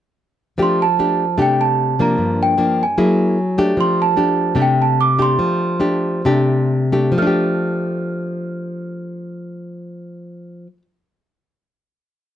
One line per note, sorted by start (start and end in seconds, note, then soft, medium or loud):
0.58 1.36 F3 medium
0.58 0.84 A3 soft
0.58 0.85 D4 soft
0.58 0.85 G4 medium
0.62 0.79 C6 medium
0.82 1.36 A5 medium
0.99 1.24 A3 soft
0.99 1.25 D4 soft
0.99 1.25 G4 medium
1.38 2.16 C3 medium
1.38 1.94 A3 soft
1.38 1.95 D4 soft
1.38 1.95 G4 medium
1.42 1.59 G5 medium
1.61 2.00 A5 medium
1.99 2.55 F3 medium
1.99 2.55 A#3 medium
1.99 2.56 D4 medium
1.99 2.37 A#5 medium
2.18 2.96 G2 medium
2.43 2.81 G5 medium
2.58 2.83 F3 soft
2.58 2.83 A#3 soft
2.58 2.84 D4 medium
2.83 3.56 G#5 medium
2.98 3.75 F#3 medium
2.98 3.37 A#3 soft
2.98 3.37 E4 medium
2.98 3.37 G#4 soft
3.58 4.14 A3 medium
3.58 4.14 D4 medium
3.58 4.14 G4 medium
3.77 4.55 F3 medium
3.77 3.99 C6 medium
4.02 4.62 A5 medium
4.17 4.54 A3 medium
4.17 4.54 D4 soft
4.17 4.54 G4 soft
4.55 5.37 C3 medium
4.55 5.15 A3 soft
4.55 5.15 D4 medium
4.55 5.15 G4 medium
4.62 4.81 G5 medium
4.82 4.99 A5 medium
5.01 5.21 D6 medium
5.18 5.79 A3 medium
5.18 5.79 D4 soft
5.18 5.79 G4 medium
5.18 6.68 C6 medium
5.39 6.23 F3 medium
5.80 6.21 A3 soft
5.80 6.21 D4 soft
5.80 6.21 G4 soft
6.25 7.14 C3 medium
6.25 6.89 A3 soft
6.25 6.90 D4 soft
6.25 6.90 G4 medium
6.92 7.17 A3 medium
6.92 7.21 D4 soft
6.92 7.26 G4 medium
7.12 10.67 F3 medium
7.18 10.73 A3 medium
7.18 10.69 F6 medium
7.22 10.77 D4 medium
7.27 10.82 G4 medium